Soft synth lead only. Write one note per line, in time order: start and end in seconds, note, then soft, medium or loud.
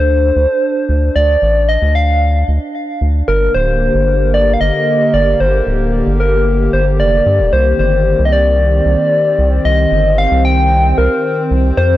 0.00 1.15 C5 loud
1.16 1.70 D5 loud
1.69 1.97 D#5 loud
1.95 2.48 F5 loud
3.28 3.53 A#4 medium
3.54 4.30 C5 loud
4.34 4.55 D5 loud
4.54 4.62 F5 medium
4.61 5.15 D#5 loud
5.14 5.42 D5 loud
5.40 5.93 C5 loud
6.20 6.69 A#4 medium
6.73 6.85 C5 medium
7.00 7.54 D5 loud
7.53 7.79 C5 loud
7.79 8.22 C5 loud
8.25 8.34 D#5 medium
8.32 9.67 D5 loud
9.65 10.18 D#5 loud
10.18 10.43 F5 loud
10.45 10.99 G5 loud
10.98 11.51 A#4 loud
11.77 11.97 C5 loud